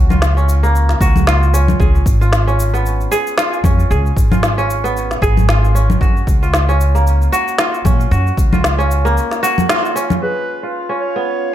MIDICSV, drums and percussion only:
0, 0, Header, 1, 2, 480
1, 0, Start_track
1, 0, Tempo, 526316
1, 1641, Time_signature, 4, 2, 24, 8
1, 10529, End_track
2, 0, Start_track
2, 0, Title_t, "Drums"
2, 94, Note_on_c, 9, 64, 74
2, 102, Note_on_c, 9, 69, 33
2, 185, Note_off_c, 9, 64, 0
2, 193, Note_off_c, 9, 69, 0
2, 199, Note_on_c, 9, 38, 90
2, 207, Note_on_c, 9, 69, 42
2, 290, Note_off_c, 9, 38, 0
2, 298, Note_off_c, 9, 69, 0
2, 343, Note_on_c, 9, 69, 23
2, 434, Note_off_c, 9, 69, 0
2, 447, Note_on_c, 9, 69, 71
2, 538, Note_off_c, 9, 69, 0
2, 583, Note_on_c, 9, 69, 32
2, 674, Note_off_c, 9, 69, 0
2, 688, Note_on_c, 9, 69, 42
2, 779, Note_off_c, 9, 69, 0
2, 814, Note_on_c, 9, 38, 32
2, 822, Note_on_c, 9, 69, 24
2, 905, Note_off_c, 9, 38, 0
2, 913, Note_off_c, 9, 69, 0
2, 918, Note_on_c, 9, 36, 99
2, 926, Note_on_c, 9, 69, 76
2, 1009, Note_off_c, 9, 36, 0
2, 1017, Note_off_c, 9, 69, 0
2, 1055, Note_on_c, 9, 64, 57
2, 1063, Note_on_c, 9, 69, 35
2, 1146, Note_off_c, 9, 64, 0
2, 1154, Note_off_c, 9, 69, 0
2, 1161, Note_on_c, 9, 38, 91
2, 1168, Note_on_c, 9, 69, 41
2, 1252, Note_off_c, 9, 38, 0
2, 1259, Note_off_c, 9, 69, 0
2, 1303, Note_on_c, 9, 69, 21
2, 1394, Note_off_c, 9, 69, 0
2, 1408, Note_on_c, 9, 69, 77
2, 1499, Note_off_c, 9, 69, 0
2, 1536, Note_on_c, 9, 64, 77
2, 1543, Note_on_c, 9, 69, 33
2, 1627, Note_off_c, 9, 64, 0
2, 1635, Note_off_c, 9, 69, 0
2, 1639, Note_on_c, 9, 36, 108
2, 1649, Note_on_c, 9, 69, 40
2, 1730, Note_off_c, 9, 36, 0
2, 1741, Note_off_c, 9, 69, 0
2, 1782, Note_on_c, 9, 69, 21
2, 1873, Note_off_c, 9, 69, 0
2, 1878, Note_on_c, 9, 36, 97
2, 1885, Note_on_c, 9, 69, 74
2, 1969, Note_off_c, 9, 36, 0
2, 1977, Note_off_c, 9, 69, 0
2, 2023, Note_on_c, 9, 69, 29
2, 2114, Note_off_c, 9, 69, 0
2, 2120, Note_on_c, 9, 38, 88
2, 2128, Note_on_c, 9, 69, 38
2, 2212, Note_off_c, 9, 38, 0
2, 2219, Note_off_c, 9, 69, 0
2, 2264, Note_on_c, 9, 69, 22
2, 2356, Note_off_c, 9, 69, 0
2, 2367, Note_on_c, 9, 69, 75
2, 2459, Note_off_c, 9, 69, 0
2, 2505, Note_on_c, 9, 69, 31
2, 2596, Note_off_c, 9, 69, 0
2, 2608, Note_on_c, 9, 69, 44
2, 2699, Note_off_c, 9, 69, 0
2, 2743, Note_on_c, 9, 69, 21
2, 2834, Note_off_c, 9, 69, 0
2, 2846, Note_on_c, 9, 69, 77
2, 2937, Note_off_c, 9, 69, 0
2, 2980, Note_on_c, 9, 69, 32
2, 3071, Note_off_c, 9, 69, 0
2, 3079, Note_on_c, 9, 38, 89
2, 3087, Note_on_c, 9, 69, 44
2, 3170, Note_off_c, 9, 38, 0
2, 3178, Note_off_c, 9, 69, 0
2, 3222, Note_on_c, 9, 69, 21
2, 3313, Note_off_c, 9, 69, 0
2, 3318, Note_on_c, 9, 36, 93
2, 3318, Note_on_c, 9, 64, 59
2, 3326, Note_on_c, 9, 69, 75
2, 3410, Note_off_c, 9, 36, 0
2, 3410, Note_off_c, 9, 64, 0
2, 3417, Note_off_c, 9, 69, 0
2, 3463, Note_on_c, 9, 69, 31
2, 3554, Note_off_c, 9, 69, 0
2, 3568, Note_on_c, 9, 69, 37
2, 3659, Note_off_c, 9, 69, 0
2, 3703, Note_on_c, 9, 69, 20
2, 3794, Note_off_c, 9, 69, 0
2, 3799, Note_on_c, 9, 36, 99
2, 3809, Note_on_c, 9, 69, 75
2, 3890, Note_off_c, 9, 36, 0
2, 3900, Note_off_c, 9, 69, 0
2, 3936, Note_on_c, 9, 64, 82
2, 3944, Note_on_c, 9, 69, 32
2, 4027, Note_off_c, 9, 64, 0
2, 4035, Note_off_c, 9, 69, 0
2, 4040, Note_on_c, 9, 38, 84
2, 4048, Note_on_c, 9, 69, 38
2, 4131, Note_off_c, 9, 38, 0
2, 4139, Note_off_c, 9, 69, 0
2, 4182, Note_on_c, 9, 69, 20
2, 4274, Note_off_c, 9, 69, 0
2, 4288, Note_on_c, 9, 69, 70
2, 4380, Note_off_c, 9, 69, 0
2, 4425, Note_on_c, 9, 69, 31
2, 4516, Note_off_c, 9, 69, 0
2, 4531, Note_on_c, 9, 69, 38
2, 4623, Note_off_c, 9, 69, 0
2, 4660, Note_on_c, 9, 38, 32
2, 4667, Note_on_c, 9, 69, 21
2, 4751, Note_off_c, 9, 38, 0
2, 4759, Note_off_c, 9, 69, 0
2, 4760, Note_on_c, 9, 36, 88
2, 4773, Note_on_c, 9, 69, 76
2, 4851, Note_off_c, 9, 36, 0
2, 4864, Note_off_c, 9, 69, 0
2, 4900, Note_on_c, 9, 64, 60
2, 4908, Note_on_c, 9, 69, 31
2, 4992, Note_off_c, 9, 64, 0
2, 4999, Note_off_c, 9, 69, 0
2, 5004, Note_on_c, 9, 38, 90
2, 5012, Note_on_c, 9, 69, 43
2, 5095, Note_off_c, 9, 38, 0
2, 5103, Note_off_c, 9, 69, 0
2, 5147, Note_on_c, 9, 69, 21
2, 5238, Note_off_c, 9, 69, 0
2, 5252, Note_on_c, 9, 69, 74
2, 5343, Note_off_c, 9, 69, 0
2, 5379, Note_on_c, 9, 64, 82
2, 5387, Note_on_c, 9, 69, 32
2, 5470, Note_off_c, 9, 64, 0
2, 5478, Note_off_c, 9, 69, 0
2, 5480, Note_on_c, 9, 36, 112
2, 5493, Note_on_c, 9, 69, 42
2, 5571, Note_off_c, 9, 36, 0
2, 5584, Note_off_c, 9, 69, 0
2, 5625, Note_on_c, 9, 69, 19
2, 5717, Note_off_c, 9, 69, 0
2, 5720, Note_on_c, 9, 36, 92
2, 5730, Note_on_c, 9, 69, 71
2, 5811, Note_off_c, 9, 36, 0
2, 5821, Note_off_c, 9, 69, 0
2, 5866, Note_on_c, 9, 69, 30
2, 5957, Note_off_c, 9, 69, 0
2, 5960, Note_on_c, 9, 38, 92
2, 5968, Note_on_c, 9, 69, 37
2, 6052, Note_off_c, 9, 38, 0
2, 6059, Note_off_c, 9, 69, 0
2, 6103, Note_on_c, 9, 69, 21
2, 6194, Note_off_c, 9, 69, 0
2, 6208, Note_on_c, 9, 69, 68
2, 6299, Note_off_c, 9, 69, 0
2, 6343, Note_on_c, 9, 69, 29
2, 6434, Note_off_c, 9, 69, 0
2, 6448, Note_on_c, 9, 69, 42
2, 6539, Note_off_c, 9, 69, 0
2, 6583, Note_on_c, 9, 69, 22
2, 6674, Note_off_c, 9, 69, 0
2, 6687, Note_on_c, 9, 69, 72
2, 6778, Note_off_c, 9, 69, 0
2, 6821, Note_on_c, 9, 69, 33
2, 6912, Note_off_c, 9, 69, 0
2, 6917, Note_on_c, 9, 38, 95
2, 6925, Note_on_c, 9, 69, 39
2, 7008, Note_off_c, 9, 38, 0
2, 7016, Note_off_c, 9, 69, 0
2, 7061, Note_on_c, 9, 69, 21
2, 7152, Note_off_c, 9, 69, 0
2, 7159, Note_on_c, 9, 36, 97
2, 7159, Note_on_c, 9, 64, 63
2, 7167, Note_on_c, 9, 69, 75
2, 7250, Note_off_c, 9, 36, 0
2, 7250, Note_off_c, 9, 64, 0
2, 7258, Note_off_c, 9, 69, 0
2, 7300, Note_on_c, 9, 69, 31
2, 7392, Note_off_c, 9, 69, 0
2, 7408, Note_on_c, 9, 69, 39
2, 7499, Note_off_c, 9, 69, 0
2, 7542, Note_on_c, 9, 69, 20
2, 7633, Note_off_c, 9, 69, 0
2, 7638, Note_on_c, 9, 36, 101
2, 7647, Note_on_c, 9, 69, 78
2, 7729, Note_off_c, 9, 36, 0
2, 7738, Note_off_c, 9, 69, 0
2, 7776, Note_on_c, 9, 64, 79
2, 7784, Note_on_c, 9, 69, 31
2, 7867, Note_off_c, 9, 64, 0
2, 7875, Note_off_c, 9, 69, 0
2, 7881, Note_on_c, 9, 38, 94
2, 7888, Note_on_c, 9, 69, 41
2, 7972, Note_off_c, 9, 38, 0
2, 7980, Note_off_c, 9, 69, 0
2, 8025, Note_on_c, 9, 69, 22
2, 8116, Note_off_c, 9, 69, 0
2, 8127, Note_on_c, 9, 69, 73
2, 8218, Note_off_c, 9, 69, 0
2, 8263, Note_on_c, 9, 69, 31
2, 8354, Note_off_c, 9, 69, 0
2, 8367, Note_on_c, 9, 69, 41
2, 8458, Note_off_c, 9, 69, 0
2, 8495, Note_on_c, 9, 38, 33
2, 8503, Note_on_c, 9, 69, 23
2, 8586, Note_off_c, 9, 38, 0
2, 8594, Note_off_c, 9, 69, 0
2, 8609, Note_on_c, 9, 69, 78
2, 8700, Note_off_c, 9, 69, 0
2, 8737, Note_on_c, 9, 64, 60
2, 8744, Note_on_c, 9, 69, 33
2, 8828, Note_off_c, 9, 64, 0
2, 8835, Note_off_c, 9, 69, 0
2, 8842, Note_on_c, 9, 38, 97
2, 8849, Note_on_c, 9, 69, 41
2, 8933, Note_off_c, 9, 38, 0
2, 8941, Note_off_c, 9, 69, 0
2, 8984, Note_on_c, 9, 69, 22
2, 9076, Note_off_c, 9, 69, 0
2, 9089, Note_on_c, 9, 69, 77
2, 9180, Note_off_c, 9, 69, 0
2, 9214, Note_on_c, 9, 64, 82
2, 9222, Note_on_c, 9, 69, 33
2, 9305, Note_off_c, 9, 64, 0
2, 9313, Note_off_c, 9, 69, 0
2, 10529, End_track
0, 0, End_of_file